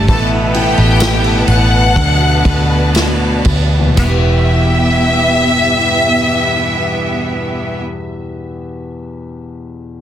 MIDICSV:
0, 0, Header, 1, 8, 480
1, 0, Start_track
1, 0, Key_signature, 1, "minor"
1, 0, Tempo, 937500
1, 45, Time_signature, 4, 2, 24, 8
1, 1006, Tempo, 986842
1, 1486, Tempo, 1045296
1, 4727, End_track
2, 0, Start_track
2, 0, Title_t, "Violin section"
2, 0, Program_c, 0, 48
2, 41, Note_on_c, 0, 81, 90
2, 49, Note_on_c, 0, 69, 71
2, 143, Note_off_c, 0, 81, 0
2, 151, Note_off_c, 0, 69, 0
2, 276, Note_on_c, 0, 79, 94
2, 289, Note_on_c, 0, 67, 81
2, 738, Note_off_c, 0, 79, 0
2, 745, Note_off_c, 0, 67, 0
2, 756, Note_on_c, 0, 78, 98
2, 768, Note_on_c, 0, 90, 77
2, 1465, Note_off_c, 0, 78, 0
2, 1471, Note_off_c, 0, 90, 0
2, 1963, Note_on_c, 0, 76, 94
2, 3705, Note_off_c, 0, 76, 0
2, 4727, End_track
3, 0, Start_track
3, 0, Title_t, "String section"
3, 0, Program_c, 1, 48
3, 39, Note_on_c, 1, 69, 72
3, 39, Note_on_c, 1, 81, 86
3, 43, Note_on_c, 1, 64, 78
3, 43, Note_on_c, 1, 71, 65
3, 994, Note_off_c, 1, 69, 0
3, 996, Note_off_c, 1, 64, 0
3, 1008, Note_on_c, 1, 66, 70
3, 1010, Note_on_c, 1, 74, 59
3, 1938, Note_off_c, 1, 81, 0
3, 1939, Note_off_c, 1, 71, 0
3, 1950, Note_off_c, 1, 66, 0
3, 1950, Note_off_c, 1, 74, 0
3, 1959, Note_on_c, 1, 79, 84
3, 1961, Note_on_c, 1, 59, 79
3, 1963, Note_on_c, 1, 64, 70
3, 1963, Note_on_c, 1, 67, 71
3, 1963, Note_on_c, 1, 76, 72
3, 3702, Note_off_c, 1, 79, 0
3, 3703, Note_off_c, 1, 59, 0
3, 3705, Note_off_c, 1, 64, 0
3, 3705, Note_off_c, 1, 67, 0
3, 3706, Note_off_c, 1, 76, 0
3, 4727, End_track
4, 0, Start_track
4, 0, Title_t, "Grand piano"
4, 0, Program_c, 2, 0
4, 0, Control_c, 2, 64, 127
4, 0, Note_on_c, 2, 55, 52
4, 0, Note_on_c, 2, 62, 55
4, 45, Note_on_c, 2, 57, 64
4, 52, Control_c, 2, 64, 0
4, 54, Note_off_c, 2, 55, 0
4, 56, Note_off_c, 2, 62, 0
4, 130, Control_c, 2, 64, 127
4, 283, Note_on_c, 2, 64, 52
4, 509, Note_off_c, 2, 57, 0
4, 517, Note_on_c, 2, 57, 53
4, 987, Note_off_c, 2, 64, 0
4, 991, Note_off_c, 2, 57, 0
4, 1000, Note_on_c, 2, 50, 61
4, 1012, Control_c, 2, 64, 0
4, 1085, Control_c, 2, 64, 127
4, 1242, Note_on_c, 2, 57, 50
4, 1489, Note_on_c, 2, 66, 54
4, 1867, Note_on_c, 2, 40, 53
4, 1904, Note_on_c, 2, 47, 54
4, 1937, Note_off_c, 2, 50, 0
4, 1939, Note_off_c, 2, 57, 0
4, 1940, Note_on_c, 2, 52, 53
4, 1945, Note_off_c, 2, 66, 0
4, 1965, Control_c, 2, 64, 0
4, 1976, Note_on_c, 2, 59, 51
4, 2011, Note_on_c, 2, 67, 53
4, 2048, Note_on_c, 2, 71, 60
4, 2051, Control_c, 2, 64, 127
4, 3610, Note_off_c, 2, 40, 0
4, 3646, Note_off_c, 2, 47, 0
4, 3683, Note_off_c, 2, 52, 0
4, 3718, Note_off_c, 2, 59, 0
4, 3753, Note_off_c, 2, 67, 0
4, 3790, Note_off_c, 2, 71, 0
4, 4727, End_track
5, 0, Start_track
5, 0, Title_t, "Steel-string acoustic guitar"
5, 0, Program_c, 3, 25
5, 0, Note_on_c, 3, 57, 52
5, 37, Note_on_c, 3, 45, 70
5, 45, Note_on_c, 3, 52, 75
5, 56, Note_on_c, 3, 59, 76
5, 63, Note_on_c, 3, 64, 87
5, 71, Note_off_c, 3, 57, 0
5, 998, Note_off_c, 3, 52, 0
5, 1000, Note_on_c, 3, 54, 63
5, 1003, Note_off_c, 3, 45, 0
5, 1007, Note_on_c, 3, 57, 67
5, 1010, Note_off_c, 3, 59, 0
5, 1012, Note_on_c, 3, 59, 64
5, 1014, Note_off_c, 3, 64, 0
5, 1016, Note_on_c, 3, 66, 68
5, 1231, Note_off_c, 3, 66, 0
5, 1237, Note_on_c, 3, 66, 48
5, 1241, Note_off_c, 3, 54, 0
5, 1242, Note_off_c, 3, 59, 0
5, 1244, Note_off_c, 3, 57, 0
5, 1247, Note_on_c, 3, 59, 43
5, 1254, Note_on_c, 3, 57, 42
5, 1941, Note_on_c, 3, 40, 74
5, 1955, Note_off_c, 3, 66, 0
5, 1955, Note_on_c, 3, 47, 75
5, 1963, Note_off_c, 3, 57, 0
5, 1965, Note_on_c, 3, 52, 77
5, 1976, Note_on_c, 3, 55, 77
5, 1983, Note_off_c, 3, 59, 0
5, 1985, Note_on_c, 3, 59, 84
5, 1993, Note_on_c, 3, 67, 87
5, 3702, Note_off_c, 3, 40, 0
5, 3716, Note_off_c, 3, 47, 0
5, 3726, Note_off_c, 3, 52, 0
5, 3736, Note_off_c, 3, 55, 0
5, 3746, Note_off_c, 3, 59, 0
5, 3754, Note_off_c, 3, 67, 0
5, 4727, End_track
6, 0, Start_track
6, 0, Title_t, "Cello section"
6, 0, Program_c, 4, 48
6, 37, Note_on_c, 4, 47, 77
6, 39, Note_on_c, 4, 59, 95
6, 983, Note_off_c, 4, 47, 0
6, 985, Note_off_c, 4, 59, 0
6, 1006, Note_on_c, 4, 47, 79
6, 1007, Note_on_c, 4, 59, 91
6, 1940, Note_off_c, 4, 47, 0
6, 1940, Note_off_c, 4, 59, 0
6, 1957, Note_on_c, 4, 59, 90
6, 1959, Note_on_c, 4, 43, 81
6, 1959, Note_on_c, 4, 52, 90
6, 3699, Note_off_c, 4, 59, 0
6, 3701, Note_off_c, 4, 43, 0
6, 3702, Note_off_c, 4, 52, 0
6, 4727, End_track
7, 0, Start_track
7, 0, Title_t, "Fingered electric bass"
7, 0, Program_c, 5, 33
7, 42, Note_on_c, 5, 33, 90
7, 377, Note_off_c, 5, 33, 0
7, 399, Note_on_c, 5, 33, 88
7, 740, Note_off_c, 5, 33, 0
7, 757, Note_on_c, 5, 33, 93
7, 988, Note_off_c, 5, 33, 0
7, 1003, Note_on_c, 5, 38, 91
7, 1226, Note_off_c, 5, 38, 0
7, 1245, Note_on_c, 5, 38, 84
7, 1702, Note_off_c, 5, 38, 0
7, 1719, Note_on_c, 5, 38, 89
7, 1941, Note_off_c, 5, 38, 0
7, 1956, Note_on_c, 5, 28, 89
7, 3698, Note_off_c, 5, 28, 0
7, 4727, End_track
8, 0, Start_track
8, 0, Title_t, "Drums"
8, 43, Note_on_c, 9, 36, 103
8, 43, Note_on_c, 9, 51, 63
8, 94, Note_off_c, 9, 51, 0
8, 95, Note_off_c, 9, 36, 0
8, 279, Note_on_c, 9, 51, 56
8, 330, Note_off_c, 9, 51, 0
8, 397, Note_on_c, 9, 51, 38
8, 448, Note_off_c, 9, 51, 0
8, 513, Note_on_c, 9, 54, 81
8, 514, Note_on_c, 9, 51, 75
8, 521, Note_on_c, 9, 38, 108
8, 564, Note_off_c, 9, 54, 0
8, 565, Note_off_c, 9, 51, 0
8, 572, Note_off_c, 9, 38, 0
8, 636, Note_on_c, 9, 51, 43
8, 687, Note_off_c, 9, 51, 0
8, 756, Note_on_c, 9, 51, 62
8, 807, Note_off_c, 9, 51, 0
8, 1004, Note_on_c, 9, 36, 83
8, 1008, Note_on_c, 9, 51, 78
8, 1053, Note_off_c, 9, 36, 0
8, 1057, Note_off_c, 9, 51, 0
8, 1243, Note_on_c, 9, 36, 89
8, 1244, Note_on_c, 9, 51, 58
8, 1292, Note_off_c, 9, 36, 0
8, 1293, Note_off_c, 9, 51, 0
8, 1484, Note_on_c, 9, 51, 82
8, 1484, Note_on_c, 9, 54, 68
8, 1490, Note_on_c, 9, 38, 115
8, 1530, Note_off_c, 9, 51, 0
8, 1530, Note_off_c, 9, 54, 0
8, 1536, Note_off_c, 9, 38, 0
8, 1713, Note_on_c, 9, 51, 59
8, 1718, Note_on_c, 9, 36, 82
8, 1759, Note_off_c, 9, 51, 0
8, 1764, Note_off_c, 9, 36, 0
8, 1955, Note_on_c, 9, 54, 77
8, 1956, Note_on_c, 9, 36, 102
8, 1956, Note_on_c, 9, 49, 76
8, 2001, Note_off_c, 9, 54, 0
8, 2002, Note_off_c, 9, 36, 0
8, 2002, Note_off_c, 9, 49, 0
8, 4727, End_track
0, 0, End_of_file